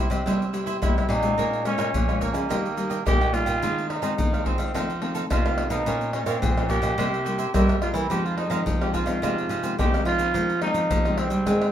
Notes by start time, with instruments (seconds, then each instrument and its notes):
Already playing: cavaquinho E4 G4
0.10 nylon-string guitar C3 G3 C4 E4, trumpet C4, cavaquinho G4 C5 E5, pandeiro, tamborim, shaker
0.26 nylon-string guitar C3 G3 C4 E4, cavaquinho E4 G4 C5 E5, pandeiro, tamborim, shaker, surdo
0.42 pandeiro, shaker
0.53 nylon-string guitar G3 C4 E4, cavaquinho E4 G4 C5 E5, pandeiro, shaker
0.66 cavaquinho E4 G4 C5 E5, pandeiro, shaker
0.82 nylon-string guitar C3 G3, cavaquinho E4 G4 C5 E5, trumpet E4, pandeiro, tamborim, shaker, surdo
0.97 nylon-string guitar G3 C4 E4, cavaquinho G4 C5 E5, pandeiro, tamborim, shaker
1.09 nylon-string guitar A#2, trumpet D#4, pandeiro, tamborim
1.22 nylon-string guitar G#3 C#4 F4, cavaquinho G4 C5 E5, pandeiro, shaker
1.38 nylon-string guitar A#2, cavaquinho A#4 C#5 F5 G#5, pandeiro, shaker, surdo
1.53 pandeiro, shaker
1.65 nylon-string guitar G#3 C#4 F4, trumpet C#4, cavaquinho A#4 C#5 F5 G#5, pandeiro, tamborim, shaker
1.78 nylon-string guitar A#2, cavaquinho A#4 C#5 F5 G#5, pandeiro, tamborim, shaker
1.94 nylon-string guitar A#2 F3, pandeiro, shaker, surdo
2.08 nylon-string guitar G#3 C#4 F4, cavaquinho C#5 F5 G#5, pandeiro, tamborim, shaker
2.21 trumpet A#3, cavaquinho A#4 C#5 F5 G#5, pandeiro, shaker, surdo
2.33 nylon-string guitar C#3, cavaquinho C#5 F5 G#5, pandeiro, tamborim, shaker
2.49 nylon-string guitar D#3 G3 A#3 D#4, cavaquinho G4 A#4 D#5 G5, pandeiro, tamborim, shaker, surdo
2.65 pandeiro, shaker
2.76 nylon-string guitar G3 A#3 D#4, cavaquinho G4 A#4 D#5 G5, pandeiro, shaker
2.89 cavaquinho G4 A#4 D#5 G5, pandeiro, shaker
3.05 nylon-string guitar A#2 G3 A#3 D#4, cavaquinho G4 A#4 D#5 G5, trumpet G4, pandeiro, tamborim, shaker, surdo
3.20 cavaquinho A#4 D#5 G5, pandeiro, tamborim, shaker
3.33 nylon-string guitar G3 A#3 D#4, trumpet F4, pandeiro, tamborim, shaker
3.46 nylon-string guitar A#2, cavaquinho A#4 D#5 G5, pandeiro, shaker
3.62 nylon-string guitar D#3 G#3 C4 F4, cavaquinho D#4 G#4 C5 F5, pandeiro, shaker, surdo
3.78 pandeiro, shaker
3.89 cavaquinho D#4 G#4 C5 F5, trumpet D#4, pandeiro, tamborim
4.02 nylon-string guitar D#3 G#3 C4 F4, cavaquinho D#4 G#4 C5 F5, pandeiro, tamborim, shaker
4.18 nylon-string guitar D#3, pandeiro, shaker, surdo
4.33 cavaquinho G#4 C5 F5, pandeiro, tamborim, shaker
4.45 nylon-string guitar G#3 C4 F4, trumpet C4, cavaquinho D#4 G#4 C5 F5, pandeiro, surdo
4.58 nylon-string guitar D#3, cavaquinho G#4 C5 F5, pandeiro, tamborim, shaker
4.74 nylon-string guitar F2 D#3 F3 A3 C4, cavaquinho D#4 A4 C5 F5, pandeiro, tamborim, shaker, surdo
4.90 pandeiro, shaker
5.01 nylon-string guitar D#3 A3 C4, cavaquinho D#4 A4 C5 F5, pandeiro
5.15 cavaquinho D#4 A4 C5 F5, pandeiro, shaker
5.30 nylon-string guitar C3, cavaquinho D#4 A4 C5 F5, trumpet F4, pandeiro, tamborim, shaker, surdo
5.45 nylon-string guitar D#3 A3 C4, cavaquinho A4 C5 F5, pandeiro, tamborim, shaker
5.58 pandeiro, tamborim
5.70 nylon-string guitar B2, trumpet D#4, cavaquinho A4 C5 F5, pandeiro, shaker
5.86 nylon-string guitar A#2 A#3 C#4 F4 C5, cavaquinho F4 A#4 C#5 F5, pandeiro, shaker, surdo
6.01 pandeiro, shaker
6.13 trumpet C#4, nylon-string guitar C#4 F4 C5, cavaquinho F4 A#4 C#5 F5, pandeiro, tamborim
6.26 nylon-string guitar A#2, trumpet C4, cavaquinho F4 A#4 C#5 F5, pandeiro, tamborim, shaker
6.42 nylon-string guitar A#2 F3, pandeiro, shaker, surdo
6.57 nylon-string guitar C#4 F4 C5, cavaquinho A#4 C#5 F5, pandeiro, tamborim, shaker
6.69 cavaquinho F4 A#4 C#5 F5, trumpet G4, pandeiro, shaker, surdo
6.81 nylon-string guitar A#2, cavaquinho A#4 C#5 F5, pandeiro, tamborim, shaker
6.97 nylon-string guitar C3 G3 A#3 E4, cavaquinho E4 A#4 C5 E5, pandeiro, tamborim, shaker, surdo
7.14 pandeiro, shaker
7.24 nylon-string guitar G3 A#3 E4, cavaquinho E4 A#4 C5 E5, pandeiro, shaker
7.38 cavaquinho E4 A#4 C5 E5, pandeiro, shaker
7.54 nylon-string guitar G2 G3 A#3 E4, cavaquinho E4 A#4 C5 E5, trumpet G4, pandeiro, tamborim, shaker, surdo
7.69 cavaquinho A#4 C5 E5, pandeiro, tamborim, shaker
7.81 nylon-string guitar G3 A#3 E4, trumpet F4, pandeiro, tamborim
7.93 nylon-string guitar E3, trumpet E4 F4, cavaquinho A#4 C5 E5, pandeiro, shaker
8.10 nylon-string guitar F2 D#3 F3 G#3 C4, cavaquinho D#4 G#4 C5 F5, trumpet G4, pandeiro, shaker, surdo
8.25 trumpet F4, pandeiro, shaker
8.37 cavaquinho D#4 G#4 C5 F5, trumpet D#4, pandeiro, tamborim
8.50 nylon-string guitar D#3 F3 G#3 C4, cavaquinho D#4 G#4 C5 F5, pandeiro, tamborim, shaker
8.66 nylon-string guitar C3 F3, pandeiro, shaker, surdo
8.81 nylon-string guitar D#3 G#3 C4, trumpet G4, cavaquinho G#4 C5 F5, pandeiro, tamborim, shaker
8.93 cavaquinho D#4 G#4 C5 F5, trumpet F4, pandeiro, shaker, surdo
9.06 nylon-string guitar D#3 F3 G#3 C4, cavaquinho G#4 C5 F5, pandeiro, tamborim, shaker
9.22 nylon-string guitar F2 C3 D#3 G#3 C4, cavaquinho D#4 G#4 C5 F5, pandeiro, tamborim, shaker, surdo
9.38 pandeiro, shaker
9.49 nylon-string guitar C3, cavaquinho D#4 G#4 C5 F5, pandeiro, shaker
9.63 nylon-string guitar D#3 G#3 C4, cavaquinho D#4 G#4 C5 F5, pandeiro, shaker
9.79 nylon-string guitar C3 D#3, cavaquinho D#4 G#4 C5 F5, trumpet G4, pandeiro, tamborim, shaker, surdo
9.93 nylon-string guitar D#3 G#3 C4, cavaquinho G#4 C5 F5, pandeiro, tamborim, shaker
10.05 nylon-string guitar F3, trumpet F4, pandeiro, tamborim
10.19 cavaquinho G#4 C5 F5, pandeiro, shaker
10.34 nylon-string guitar F2 D#3 F3 G#3 C4, pandeiro, shaker, surdo
10.49 pandeiro, shaker
10.62 nylon-string guitar D#3 G#3 C4, trumpet D#4, pandeiro, tamborim
10.74 nylon-string guitar F3, pandeiro, shaker
10.91 nylon-string guitar C3 F3, pandeiro, shaker, surdo
11.05 nylon-string guitar D#3 G#3 C4, pandeiro, tamborim, shaker
11.18 trumpet C4, pandeiro, tamborim
11.30 nylon-string guitar G3, pandeiro, shaker
11.47 nylon-string guitar G#2 D#3 G#3 C4, pandeiro, tamborim, shaker, surdo
11.61 pandeiro, tamborim, shaker